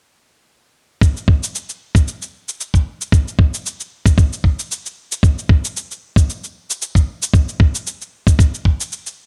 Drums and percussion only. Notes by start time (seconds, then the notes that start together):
1.01 kick, cabasa
1.17 cabasa
1.28 kick
1.43 cabasa
1.55 cabasa
1.69 cabasa
1.95 kick, cabasa
2.08 cabasa
2.22 cabasa
2.49 cabasa
2.61 cabasa
2.74 kick, cabasa
3.01 cabasa
3.12 kick, cabasa
3.28 cabasa
3.39 kick
3.54 cabasa
3.66 cabasa
3.80 cabasa
4.06 kick, cabasa
4.18 kick, cabasa
4.33 cabasa
4.44 kick
4.59 cabasa
4.71 cabasa
4.86 cabasa
5.12 cabasa
5.23 kick, cabasa
5.39 cabasa
5.49 kick
5.65 cabasa
5.77 cabasa
5.91 cabasa
6.16 kick, cabasa
6.30 cabasa
6.44 cabasa
6.70 cabasa
6.82 cabasa
6.95 kick, cabasa
7.22 cabasa
7.34 kick, cabasa
7.49 cabasa
7.60 kick
7.75 cabasa
7.87 cabasa
8.01 cabasa
8.27 kick, cabasa
8.39 kick, cabasa
8.54 cabasa
8.65 kick
8.80 cabasa
8.92 cabasa
9.07 cabasa